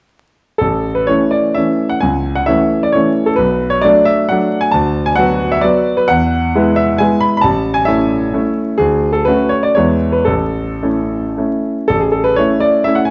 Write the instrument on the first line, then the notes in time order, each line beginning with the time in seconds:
grand piano
0.58 A1 A4
0.95 B4
1.07 E3 A3 C#4 C#5
1.31 D5
1.54 E3 A3 C#4 E5
1.90 F#5
2.01 C#2 G#5
2.35 F#5
2.46 E3 A3 C#4 E5
2.83 D5
2.92 E3 A3 C#4 C#5
3.26 A4
3.36 B1 B4
3.70 C#5
3.81 F#3 A3 D4 D5
4.05 E5
4.29 F#3 A3 D4 F#5
4.61 G#5
4.71 D2 A5
5.06 G#5
5.16 F#3 B3 F#4 F#5
5.52 E5
5.61 F#3 B3 F#4 D5
5.97 B4
6.08 E2 F#5
6.55 G#3 B3 E4
6.76 E5
6.98 G#3 B3 E4 G#5
7.21 B5
7.37 B5
7.41 A1 A5
7.74 G#5
7.85 A3 C#4 E4 E5
8.34 A3 C#4 E4
8.78 D2 G#4
9.13 A4
9.25 A3 C#4 F#4 B4
9.49 C#5
9.63 D5
9.75 E2 G#3 B3 E4 C#5
10.12 B4
10.25 A1 A4
10.83 A3 C#4 E4
11.37 A3 C#4 E4
11.88 A1 A4
12.00 G#4
12.12 A4
12.24 B4
12.36 A3 C#4 E4 C#5
12.60 D5
12.84 A3 C#4 E4 E5
12.95 F#5
13.05 G#5